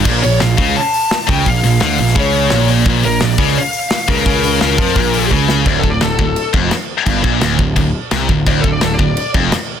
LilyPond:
<<
  \new Staff \with { instrumentName = "Lead electric guitar" } { \time 4/4 \key d \minor \tempo 4 = 171 r8 cis''8 f''4 a''4. g''8 | f''4 f''4 cis''4. r8 | r8 bes'8 d''4 f''4. bes'8~ | bes'2. r4 |
\tuplet 3/2 { d''8 a'8 d''8 a'8 a'4~ } a'8 r4. | r1 | \tuplet 3/2 { d''8 a'8 d''8 a'8 d''4~ } d''8 r4. | }
  \new Staff \with { instrumentName = "Distorted electric guitar" } { \clef bass \time 4/4 \key d \minor bes,8 bes,8 bes,8 cis8 r4. cis8 | bes,8 bes,8 d8 bes,8 cis4 bes,4 | bes,8 bes,8 bes,8 cis8 r4. cis8 | cis4 cis8 f8 bes,4 cis4 |
d,8 d,8 d,8 d,8 r8 f,8 r4 | g,8 bes,8 d,8 d,8 d,8 r8 c8 d,8 | d,8 d,8 d,8 d,8 r8 f,8 r4 | }
  \new Staff \with { instrumentName = "Distorted electric guitar" } { \clef bass \time 4/4 \key d \minor bes,8 bes,8 bes,8 cis8 r4. cis8 | bes,8 bes,8 d8 bes,8 cis4 bes,4 | bes,8 bes,8 bes,8 cis8 r4. cis8 | cis4 cis8 f8 bes,4 cis4 |
d,8 d,8 d,8 d,8 r8 f,8 r4 | g,8 bes,8 d,8 d,8 d,8 r8 c8 d,8 | d,8 d,8 d,8 d,8 r8 f,8 r4 | }
  \new Staff \with { instrumentName = "Picked electric bass" } { \clef bass \time 4/4 \key d \minor bes,,8 bes,,8 bes,,8 cis,8 r4. cis,8 | bes,,8 bes,,8 d,8 bes,,8 cis,4 bes,,4 | bes,,8 bes,,8 bes,,8 cis,8 r4. cis,8 | cis,4 cis,8 f,8 bes,,4 cis,4 |
d,,8 d,,8 d,,8 d,,8 r8 f,,8 r4 | g,,8 bes,,8 d,,8 d,,8 d,,8 r8 c,8 d,,8 | d,,8 d,,8 d,,8 d,,8 r8 f,,8 r4 | }
  \new DrumStaff \with { instrumentName = "Drums" } \drummode { \time 4/4 <cymc bd>8 hho8 <hho sn>8 <hho bd>8 hho8 hho8 <hho sn>8 bd8 | <hho bd>8 hho8 <hho sn>8 hho16 sn16 <hho bd>8 hho8 <hho sn>8 hho8 | bd8 hho8 <hho sn>8 <hho bd>16 sn16 hho8 hho8 <hho sn>8 <hho bd>16 sn16 | <hho bd>8 hho8 <hho sn>8 <hho bd>16 sn16 <hho bd>8 hho8 bd8 sn8 |
<cymc bd>8 bd8 <cymc sn>8 bd8 cymc8 bd8 <cymc sn>4 | <cymc bd>8 bd8 <cymc sn>8 bd8 <cymc bd>4 <cymc sn>8 bd8 | <cymc bd>8 bd8 <cymc sn>8 bd8 cymc8 bd8 <cymc sn>4 | }
>>